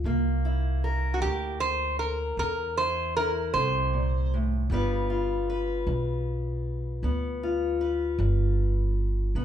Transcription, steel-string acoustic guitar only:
0.05 0.75 C3 medium
0.05 2.38 A#3 medium
0.45 2.77 E4 medium
0.84 4.67 A#4 medium
1.22 1.92 C3 medium
2.39 3.08 C3 medium
2.79 3.16 E4 medium
3.17 4.67 E4 medium
3.55 3.93 C3 medium
3.93 4.32 A#2 medium
4.34 4.70 A2 medium
4.71 5.40 G2 medium
4.71 9.31 G3 medium
4.71 7.04 B3 medium
4.71 5.10 F4 medium
4.71 5.49 B4 medium
5.10 7.42 F4 medium
5.50 7.80 B4 medium
5.87 6.57 G2 medium
7.03 7.73 G2 medium
7.03 9.31 B3 medium
7.43 9.31 F4 medium
7.81 9.31 B4 medium
8.20 8.89 G2 medium
9.36 9.45 G2 medium
9.36 9.45 B3 medium

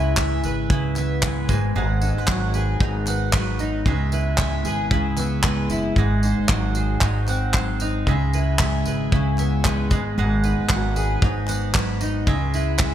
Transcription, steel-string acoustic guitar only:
0.00 0.70 C#3 medium
0.00 1.56 E4 medium
0.18 1.24 G#3 medium
0.45 2.55 B4 medium
0.71 1.56 C#3 medium
0.97 3.07 B3 medium
1.24 2.28 G#3 medium
1.50 1.74 G#2 medium
1.75 2.79 G#2 medium
2.02 3.59 D#4 medium
2.29 3.33 F#3 medium
2.55 4.65 G#4 medium
2.81 3.92 G#2 medium
3.07 4.94 B3 medium
3.34 3.93 F#3 medium
3.60 3.92 D#4 medium
3.86 4.90 C#3 medium
4.13 5.69 E4 medium
4.39 5.44 G#3 medium
4.65 6.54 G#4 medium
4.91 6.03 C#3 medium
5.17 6.02 B3 medium
5.45 6.50 G#3 medium
5.71 6.03 E4 medium
5.97 7.01 G#2 medium
6.24 7.81 D#4 medium
6.51 7.54 F#3 medium
6.77 8.87 G#4 medium
7.02 8.13 G#2 medium
7.28 8.13 C4 medium
7.55 8.14 F#3 medium
7.82 8.14 D#4 medium
8.09 9.12 C#3 medium
8.35 9.98 E4 medium
8.61 9.64 G#3 medium
8.87 10.73 G#4 medium
9.13 9.98 C#3 medium
9.39 11.48 B3 medium
9.65 10.69 G#3 medium
9.91 10.16 G#2 medium
10.18 11.21 G#2 medium
10.45 12.00 D#4 medium
10.70 11.74 F#3 medium
10.96 12.94 G#4 medium
11.22 12.33 G#2 medium
11.49 12.94 B3 medium
11.75 12.34 F#3 medium
12.01 12.34 D#4 medium
12.27 12.94 C#3 medium
12.54 12.94 E4 medium
12.80 12.94 G#3 medium

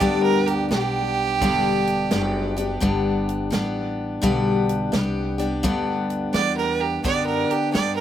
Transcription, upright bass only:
0.01 0.70 D2 medium
0.71 1.39 B1 medium
1.41 2.10 E1 medium
2.12 2.80 F#1 medium
2.82 3.51 G1 medium
3.53 4.21 A1 medium
4.23 4.91 B1 medium
4.93 5.62 C2 medium
5.64 6.32 D2 medium
6.33 7.02 E2 medium
7.04 7.47 F#2 medium
7.50 muted upright bass stroke soft
7.75 8.01 G2 medium

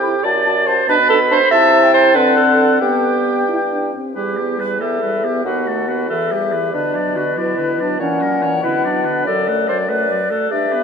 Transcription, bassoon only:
0.00 0.17 C3 medium
0.25 0.81 F#2 medium
0.88 1.43 B2 medium
1.51 2.17 C3 medium
2.15 2.80 D3 medium
2.81 3.91 G2 medium
4.15 5.41 E2 soft
5.45 6.11 D#2 soft
6.09 6.72 E2 soft
6.73 8.02 B2 soft
8.00 8.62 A#2 medium
8.62 9.27 B2 medium
9.25 10.34 F#2 medium
10.51 10.84 G2 medium

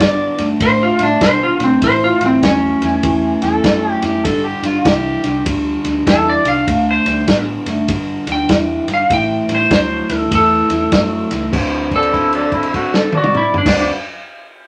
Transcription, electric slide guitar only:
0.62 0.81 C5 loud
0.83 1.01 F4 medium
1.03 1.22 D4 medium
1.23 1.42 C5 medium
1.43 1.62 F4 medium
1.64 1.82 C4 medium
1.84 2.02 C5 loud
2.04 2.23 F4 medium
2.26 2.44 C4 medium
2.45 4.22 C#4 medium
6.09 6.28 A4 medium
6.29 6.48 D5 medium
6.48 6.87 F5 medium
6.91 7.48 C5 medium
8.32 8.89 G5 medium
8.94 9.11 F5 medium
9.14 9.51 G5 medium
9.55 9.72 C5 medium
9.75 10.16 C5 loud
10.16 10.33 A4 medium
10.35 11.51 A4 loud
11.96 13.12 A4 loud
13.17 13.36 F#4 medium
13.37 13.56 E4 medium
13.58 13.86 D4 medium

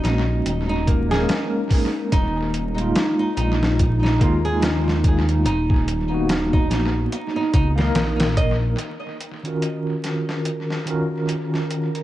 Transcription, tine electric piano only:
0.00 1.05 G#3 medium
0.00 1.06 A#3 medium
0.00 1.07 C#4 medium
0.00 1.07 F#4 medium
1.09 2.09 G#3 medium
1.09 2.10 A#3 medium
1.09 2.10 C#4 medium
1.14 2.11 A#4 loud
2.76 4.16 G#3 medium
2.76 4.16 A#3 medium
2.76 4.17 D#4 medium
2.82 4.18 F4 medium
4.19 5.43 G#3 medium
4.19 5.43 A#3 medium
4.19 5.44 D#4 medium
4.23 5.45 F4 loud
6.10 7.72 A#3 medium
6.10 7.72 B3 medium
6.10 7.73 D#4 medium
6.14 7.74 F#4 medium
7.76 8.76 A#3 medium
7.76 8.77 D#4 medium
7.81 8.78 A#4 medium
9.43 10.82 D#3 medium
9.43 10.83 C#4 medium
9.43 10.84 F4 medium
9.43 10.84 F#4 medium
9.48 10.85 A#4 medium
10.85 12.03 D#3 medium
10.85 12.03 C#4 medium
10.85 12.03 F4 medium
10.85 12.03 F#4 medium
10.91 12.03 A#4 medium

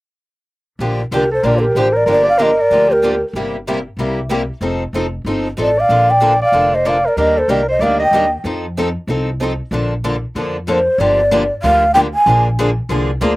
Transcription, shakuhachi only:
1.15 1.31 A#4 medium
1.34 1.47 C5 medium
1.45 1.60 D5 medium
1.59 1.65 A4 soft
1.63 1.79 A#4 medium
1.78 1.98 C5 medium
1.97 2.08 D5 medium
2.11 2.27 D5 medium
2.29 2.44 F5 medium
2.42 2.63 D#5 medium
2.61 2.94 D5 medium
2.92 3.23 A#4 medium
5.62 5.82 D5 medium
5.80 6.12 F5 medium
6.11 6.42 G5 medium
6.43 6.76 F5 medium
6.75 6.90 D#5 medium
6.89 7.10 F5 medium
7.08 7.18 D5 medium
7.18 7.40 D#5 medium
7.38 7.52 C5 medium
7.50 7.69 D5 medium
7.70 7.84 D#5 medium
7.83 8.01 F5 medium
8.03 8.31 G5 medium
10.69 11.01 C5 medium
10.69 10.73 C#5 medium
11.00 11.50 D5 medium
11.63 11.92 F5 medium
11.94 12.00 G5 medium
12.14 12.43 G#5 medium

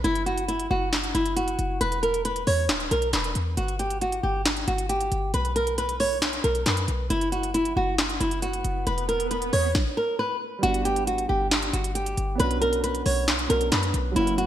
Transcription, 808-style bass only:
0.04 0.68 F#1 loud
0.71 1.13 F#1 loud
1.15 1.57 F#1 loud
1.59 1.80 F#1 loud
1.81 2.44 E1 loud
2.47 2.71 E2 loud
2.69 2.90 D1 loud
2.91 3.12 B1 loud
3.13 3.34 E1 loud
3.35 3.56 E2 loud
3.57 4.21 G1 loud
4.23 4.66 G1 loud
4.68 5.10 G1 loud
5.12 5.33 G1 loud
5.34 6.40 B1 loud
6.44 6.65 B1 loud
6.66 6.87 F#2 loud
6.88 7.09 B1 loud
7.10 7.74 F#1 loud
7.76 8.19 F#1 loud
8.20 8.63 F#1 loud
8.65 8.86 F#1 loud
8.87 9.50 E1 loud
9.53 9.74 E2 loud
10.63 11.27 G1 loud
11.29 11.72 G1 loud
11.73 12.16 G1 loud
12.18 12.39 G1 loud
12.40 13.03 B1 loud
13.06 13.48 B1 loud
13.50 13.71 B1 loud
13.72 13.93 F#2 loud
13.94 14.15 B1 loud
14.16 14.46 F#1 loud

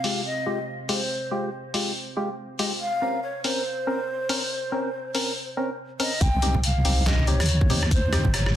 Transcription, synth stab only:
0.04 0.22 G#3 medium
0.04 0.22 F4 medium
0.04 0.22 G4 medium
0.46 0.59 G#3 medium
0.46 0.59 F4 medium
0.46 0.59 G4 medium
0.89 1.02 G#3 medium
0.89 1.02 F4 medium
0.89 1.02 G4 loud
1.31 1.50 G#3 medium
1.31 1.50 F4 medium
1.31 1.50 G4 medium
1.74 1.92 G#3 medium
1.74 1.92 F4 medium
1.74 1.92 G4 medium
2.17 2.30 G#3 medium
2.17 2.30 F4 medium
2.17 2.30 G4 medium
2.59 2.72 G#3 medium
2.59 2.72 F4 medium
2.59 2.72 G4 loud
3.02 3.20 C4 medium
3.02 3.20 C#4 medium
3.02 3.20 A#4 medium
3.44 3.63 C4 medium
3.44 3.63 C#4 medium
3.44 3.63 A#4 medium
3.87 4.00 C4 medium
3.87 4.00 C#4 medium
3.87 4.00 A#4 medium
4.29 4.42 C4 medium
4.29 4.42 C#4 medium
4.29 4.42 A#4 loud
4.72 4.90 C4 medium
4.72 4.90 C#4 medium
4.72 4.90 A#4 medium
5.15 5.33 C4 medium
5.15 5.33 C#4 medium
5.15 5.33 A#4 medium
5.57 5.70 C4 medium
5.57 5.70 C#4 medium
5.57 5.70 A#4 medium
6.00 6.13 C4 loud
6.00 6.13 C#4 medium
6.00 6.13 A#4 loud
6.42 6.60 C4 medium
6.42 6.61 D#4 medium
6.42 6.60 G4 medium
6.85 7.03 C4 medium
6.85 7.03 D#4 medium
6.85 7.03 G4 medium
7.27 7.40 C4 medium
7.27 7.40 D#4 medium
7.27 7.40 G4 loud
7.70 7.83 C4 loud
7.70 7.83 D#4 medium
7.70 7.83 G4 loud
8.12 8.31 C4 medium
8.12 8.31 D#4 medium
8.12 8.31 G4 loud

